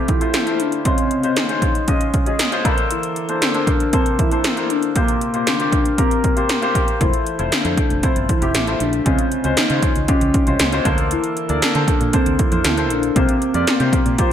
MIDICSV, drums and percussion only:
0, 0, Header, 1, 2, 480
1, 0, Start_track
1, 0, Key_signature, -1, "major"
1, 0, Tempo, 512821
1, 799, Time_signature, 4, 2, 24, 8
1, 13410, End_track
2, 0, Start_track
2, 0, Title_t, "Drums"
2, 77, Note_on_c, 9, 42, 60
2, 80, Note_on_c, 9, 36, 76
2, 171, Note_off_c, 9, 42, 0
2, 174, Note_off_c, 9, 36, 0
2, 197, Note_on_c, 9, 42, 43
2, 291, Note_off_c, 9, 42, 0
2, 316, Note_on_c, 9, 42, 84
2, 318, Note_on_c, 9, 38, 91
2, 409, Note_off_c, 9, 42, 0
2, 411, Note_off_c, 9, 38, 0
2, 438, Note_on_c, 9, 42, 37
2, 532, Note_off_c, 9, 42, 0
2, 558, Note_on_c, 9, 42, 68
2, 652, Note_off_c, 9, 42, 0
2, 676, Note_on_c, 9, 42, 44
2, 770, Note_off_c, 9, 42, 0
2, 797, Note_on_c, 9, 42, 79
2, 798, Note_on_c, 9, 36, 88
2, 891, Note_off_c, 9, 42, 0
2, 892, Note_off_c, 9, 36, 0
2, 916, Note_on_c, 9, 42, 55
2, 1009, Note_off_c, 9, 42, 0
2, 1038, Note_on_c, 9, 42, 53
2, 1131, Note_off_c, 9, 42, 0
2, 1155, Note_on_c, 9, 42, 46
2, 1249, Note_off_c, 9, 42, 0
2, 1277, Note_on_c, 9, 42, 78
2, 1279, Note_on_c, 9, 38, 90
2, 1371, Note_off_c, 9, 42, 0
2, 1373, Note_off_c, 9, 38, 0
2, 1396, Note_on_c, 9, 42, 41
2, 1489, Note_off_c, 9, 42, 0
2, 1516, Note_on_c, 9, 36, 80
2, 1517, Note_on_c, 9, 42, 57
2, 1610, Note_off_c, 9, 36, 0
2, 1611, Note_off_c, 9, 42, 0
2, 1639, Note_on_c, 9, 42, 40
2, 1733, Note_off_c, 9, 42, 0
2, 1757, Note_on_c, 9, 42, 77
2, 1760, Note_on_c, 9, 36, 84
2, 1851, Note_off_c, 9, 42, 0
2, 1853, Note_off_c, 9, 36, 0
2, 1879, Note_on_c, 9, 42, 48
2, 1972, Note_off_c, 9, 42, 0
2, 1999, Note_on_c, 9, 42, 63
2, 2001, Note_on_c, 9, 36, 76
2, 2093, Note_off_c, 9, 42, 0
2, 2095, Note_off_c, 9, 36, 0
2, 2119, Note_on_c, 9, 42, 43
2, 2213, Note_off_c, 9, 42, 0
2, 2238, Note_on_c, 9, 42, 88
2, 2240, Note_on_c, 9, 38, 94
2, 2332, Note_off_c, 9, 42, 0
2, 2334, Note_off_c, 9, 38, 0
2, 2361, Note_on_c, 9, 42, 38
2, 2454, Note_off_c, 9, 42, 0
2, 2480, Note_on_c, 9, 36, 98
2, 2482, Note_on_c, 9, 42, 68
2, 2573, Note_off_c, 9, 36, 0
2, 2575, Note_off_c, 9, 42, 0
2, 2599, Note_on_c, 9, 42, 45
2, 2692, Note_off_c, 9, 42, 0
2, 2720, Note_on_c, 9, 42, 82
2, 2813, Note_off_c, 9, 42, 0
2, 2839, Note_on_c, 9, 42, 54
2, 2932, Note_off_c, 9, 42, 0
2, 2960, Note_on_c, 9, 42, 54
2, 3053, Note_off_c, 9, 42, 0
2, 3077, Note_on_c, 9, 42, 47
2, 3171, Note_off_c, 9, 42, 0
2, 3199, Note_on_c, 9, 42, 79
2, 3201, Note_on_c, 9, 38, 93
2, 3293, Note_off_c, 9, 42, 0
2, 3295, Note_off_c, 9, 38, 0
2, 3317, Note_on_c, 9, 42, 39
2, 3411, Note_off_c, 9, 42, 0
2, 3437, Note_on_c, 9, 36, 75
2, 3438, Note_on_c, 9, 42, 58
2, 3530, Note_off_c, 9, 36, 0
2, 3532, Note_off_c, 9, 42, 0
2, 3560, Note_on_c, 9, 42, 43
2, 3653, Note_off_c, 9, 42, 0
2, 3678, Note_on_c, 9, 42, 77
2, 3680, Note_on_c, 9, 36, 87
2, 3771, Note_off_c, 9, 42, 0
2, 3773, Note_off_c, 9, 36, 0
2, 3800, Note_on_c, 9, 42, 46
2, 3893, Note_off_c, 9, 42, 0
2, 3921, Note_on_c, 9, 42, 61
2, 3922, Note_on_c, 9, 36, 77
2, 4015, Note_off_c, 9, 42, 0
2, 4016, Note_off_c, 9, 36, 0
2, 4039, Note_on_c, 9, 42, 45
2, 4132, Note_off_c, 9, 42, 0
2, 4157, Note_on_c, 9, 42, 84
2, 4160, Note_on_c, 9, 38, 100
2, 4251, Note_off_c, 9, 42, 0
2, 4253, Note_off_c, 9, 38, 0
2, 4279, Note_on_c, 9, 42, 38
2, 4372, Note_off_c, 9, 42, 0
2, 4400, Note_on_c, 9, 42, 70
2, 4493, Note_off_c, 9, 42, 0
2, 4516, Note_on_c, 9, 42, 45
2, 4610, Note_off_c, 9, 42, 0
2, 4638, Note_on_c, 9, 42, 79
2, 4639, Note_on_c, 9, 36, 95
2, 4732, Note_off_c, 9, 42, 0
2, 4733, Note_off_c, 9, 36, 0
2, 4759, Note_on_c, 9, 42, 54
2, 4853, Note_off_c, 9, 42, 0
2, 4880, Note_on_c, 9, 42, 56
2, 4974, Note_off_c, 9, 42, 0
2, 4996, Note_on_c, 9, 42, 45
2, 5090, Note_off_c, 9, 42, 0
2, 5119, Note_on_c, 9, 42, 80
2, 5121, Note_on_c, 9, 38, 93
2, 5212, Note_off_c, 9, 42, 0
2, 5214, Note_off_c, 9, 38, 0
2, 5239, Note_on_c, 9, 42, 38
2, 5332, Note_off_c, 9, 42, 0
2, 5357, Note_on_c, 9, 36, 76
2, 5359, Note_on_c, 9, 42, 59
2, 5451, Note_off_c, 9, 36, 0
2, 5453, Note_off_c, 9, 42, 0
2, 5480, Note_on_c, 9, 42, 42
2, 5574, Note_off_c, 9, 42, 0
2, 5599, Note_on_c, 9, 42, 77
2, 5601, Note_on_c, 9, 36, 84
2, 5693, Note_off_c, 9, 42, 0
2, 5694, Note_off_c, 9, 36, 0
2, 5721, Note_on_c, 9, 42, 47
2, 5815, Note_off_c, 9, 42, 0
2, 5840, Note_on_c, 9, 42, 61
2, 5842, Note_on_c, 9, 36, 74
2, 5934, Note_off_c, 9, 42, 0
2, 5936, Note_off_c, 9, 36, 0
2, 5959, Note_on_c, 9, 42, 46
2, 6053, Note_off_c, 9, 42, 0
2, 6077, Note_on_c, 9, 42, 84
2, 6079, Note_on_c, 9, 38, 94
2, 6171, Note_off_c, 9, 42, 0
2, 6173, Note_off_c, 9, 38, 0
2, 6200, Note_on_c, 9, 42, 38
2, 6294, Note_off_c, 9, 42, 0
2, 6319, Note_on_c, 9, 36, 79
2, 6321, Note_on_c, 9, 42, 67
2, 6412, Note_off_c, 9, 36, 0
2, 6414, Note_off_c, 9, 42, 0
2, 6439, Note_on_c, 9, 42, 44
2, 6533, Note_off_c, 9, 42, 0
2, 6559, Note_on_c, 9, 36, 98
2, 6559, Note_on_c, 9, 42, 75
2, 6653, Note_off_c, 9, 36, 0
2, 6653, Note_off_c, 9, 42, 0
2, 6678, Note_on_c, 9, 42, 52
2, 6772, Note_off_c, 9, 42, 0
2, 6800, Note_on_c, 9, 42, 55
2, 6894, Note_off_c, 9, 42, 0
2, 6917, Note_on_c, 9, 42, 47
2, 7011, Note_off_c, 9, 42, 0
2, 7039, Note_on_c, 9, 42, 81
2, 7041, Note_on_c, 9, 38, 94
2, 7132, Note_off_c, 9, 42, 0
2, 7134, Note_off_c, 9, 38, 0
2, 7158, Note_on_c, 9, 42, 38
2, 7252, Note_off_c, 9, 42, 0
2, 7277, Note_on_c, 9, 36, 82
2, 7278, Note_on_c, 9, 42, 60
2, 7370, Note_off_c, 9, 36, 0
2, 7372, Note_off_c, 9, 42, 0
2, 7398, Note_on_c, 9, 42, 41
2, 7492, Note_off_c, 9, 42, 0
2, 7517, Note_on_c, 9, 42, 78
2, 7519, Note_on_c, 9, 36, 86
2, 7610, Note_off_c, 9, 42, 0
2, 7613, Note_off_c, 9, 36, 0
2, 7638, Note_on_c, 9, 42, 48
2, 7732, Note_off_c, 9, 42, 0
2, 7761, Note_on_c, 9, 42, 62
2, 7762, Note_on_c, 9, 36, 78
2, 7854, Note_off_c, 9, 42, 0
2, 7855, Note_off_c, 9, 36, 0
2, 7880, Note_on_c, 9, 42, 46
2, 7974, Note_off_c, 9, 42, 0
2, 7998, Note_on_c, 9, 42, 90
2, 8000, Note_on_c, 9, 38, 93
2, 8092, Note_off_c, 9, 42, 0
2, 8094, Note_off_c, 9, 38, 0
2, 8119, Note_on_c, 9, 42, 37
2, 8213, Note_off_c, 9, 42, 0
2, 8240, Note_on_c, 9, 42, 71
2, 8333, Note_off_c, 9, 42, 0
2, 8357, Note_on_c, 9, 42, 47
2, 8451, Note_off_c, 9, 42, 0
2, 8478, Note_on_c, 9, 42, 82
2, 8479, Note_on_c, 9, 36, 95
2, 8572, Note_off_c, 9, 42, 0
2, 8573, Note_off_c, 9, 36, 0
2, 8597, Note_on_c, 9, 42, 56
2, 8691, Note_off_c, 9, 42, 0
2, 8720, Note_on_c, 9, 42, 55
2, 8813, Note_off_c, 9, 42, 0
2, 8836, Note_on_c, 9, 42, 51
2, 8930, Note_off_c, 9, 42, 0
2, 8957, Note_on_c, 9, 42, 84
2, 8959, Note_on_c, 9, 38, 99
2, 9050, Note_off_c, 9, 42, 0
2, 9052, Note_off_c, 9, 38, 0
2, 9076, Note_on_c, 9, 42, 38
2, 9170, Note_off_c, 9, 42, 0
2, 9196, Note_on_c, 9, 36, 77
2, 9197, Note_on_c, 9, 42, 60
2, 9290, Note_off_c, 9, 36, 0
2, 9290, Note_off_c, 9, 42, 0
2, 9318, Note_on_c, 9, 42, 41
2, 9412, Note_off_c, 9, 42, 0
2, 9437, Note_on_c, 9, 42, 81
2, 9440, Note_on_c, 9, 36, 90
2, 9531, Note_off_c, 9, 42, 0
2, 9533, Note_off_c, 9, 36, 0
2, 9559, Note_on_c, 9, 42, 48
2, 9653, Note_off_c, 9, 42, 0
2, 9679, Note_on_c, 9, 42, 65
2, 9681, Note_on_c, 9, 36, 80
2, 9773, Note_off_c, 9, 42, 0
2, 9775, Note_off_c, 9, 36, 0
2, 9798, Note_on_c, 9, 42, 44
2, 9892, Note_off_c, 9, 42, 0
2, 9916, Note_on_c, 9, 42, 92
2, 9918, Note_on_c, 9, 38, 102
2, 10009, Note_off_c, 9, 42, 0
2, 10012, Note_off_c, 9, 38, 0
2, 10038, Note_on_c, 9, 42, 38
2, 10132, Note_off_c, 9, 42, 0
2, 10158, Note_on_c, 9, 36, 102
2, 10158, Note_on_c, 9, 42, 70
2, 10252, Note_off_c, 9, 36, 0
2, 10252, Note_off_c, 9, 42, 0
2, 10276, Note_on_c, 9, 42, 47
2, 10370, Note_off_c, 9, 42, 0
2, 10398, Note_on_c, 9, 42, 83
2, 10492, Note_off_c, 9, 42, 0
2, 10517, Note_on_c, 9, 42, 52
2, 10610, Note_off_c, 9, 42, 0
2, 10640, Note_on_c, 9, 42, 57
2, 10733, Note_off_c, 9, 42, 0
2, 10756, Note_on_c, 9, 42, 49
2, 10849, Note_off_c, 9, 42, 0
2, 10878, Note_on_c, 9, 42, 80
2, 10880, Note_on_c, 9, 38, 92
2, 10972, Note_off_c, 9, 42, 0
2, 10973, Note_off_c, 9, 38, 0
2, 10997, Note_on_c, 9, 42, 39
2, 11091, Note_off_c, 9, 42, 0
2, 11116, Note_on_c, 9, 36, 78
2, 11119, Note_on_c, 9, 42, 61
2, 11210, Note_off_c, 9, 36, 0
2, 11212, Note_off_c, 9, 42, 0
2, 11238, Note_on_c, 9, 42, 43
2, 11332, Note_off_c, 9, 42, 0
2, 11356, Note_on_c, 9, 42, 83
2, 11359, Note_on_c, 9, 36, 87
2, 11450, Note_off_c, 9, 42, 0
2, 11452, Note_off_c, 9, 36, 0
2, 11477, Note_on_c, 9, 42, 51
2, 11571, Note_off_c, 9, 42, 0
2, 11597, Note_on_c, 9, 42, 65
2, 11600, Note_on_c, 9, 36, 79
2, 11691, Note_off_c, 9, 42, 0
2, 11693, Note_off_c, 9, 36, 0
2, 11716, Note_on_c, 9, 42, 45
2, 11810, Note_off_c, 9, 42, 0
2, 11834, Note_on_c, 9, 42, 90
2, 11837, Note_on_c, 9, 38, 95
2, 11928, Note_off_c, 9, 42, 0
2, 11930, Note_off_c, 9, 38, 0
2, 11957, Note_on_c, 9, 42, 39
2, 12051, Note_off_c, 9, 42, 0
2, 12079, Note_on_c, 9, 42, 73
2, 12172, Note_off_c, 9, 42, 0
2, 12196, Note_on_c, 9, 42, 46
2, 12290, Note_off_c, 9, 42, 0
2, 12317, Note_on_c, 9, 42, 83
2, 12318, Note_on_c, 9, 36, 98
2, 12411, Note_off_c, 9, 36, 0
2, 12411, Note_off_c, 9, 42, 0
2, 12436, Note_on_c, 9, 42, 55
2, 12530, Note_off_c, 9, 42, 0
2, 12559, Note_on_c, 9, 42, 57
2, 12652, Note_off_c, 9, 42, 0
2, 12676, Note_on_c, 9, 42, 49
2, 12770, Note_off_c, 9, 42, 0
2, 12798, Note_on_c, 9, 42, 80
2, 12800, Note_on_c, 9, 38, 91
2, 12892, Note_off_c, 9, 42, 0
2, 12893, Note_off_c, 9, 38, 0
2, 12916, Note_on_c, 9, 42, 40
2, 13010, Note_off_c, 9, 42, 0
2, 13036, Note_on_c, 9, 36, 84
2, 13038, Note_on_c, 9, 42, 63
2, 13129, Note_off_c, 9, 36, 0
2, 13132, Note_off_c, 9, 42, 0
2, 13157, Note_on_c, 9, 42, 42
2, 13251, Note_off_c, 9, 42, 0
2, 13277, Note_on_c, 9, 42, 80
2, 13278, Note_on_c, 9, 36, 88
2, 13370, Note_off_c, 9, 42, 0
2, 13372, Note_off_c, 9, 36, 0
2, 13410, End_track
0, 0, End_of_file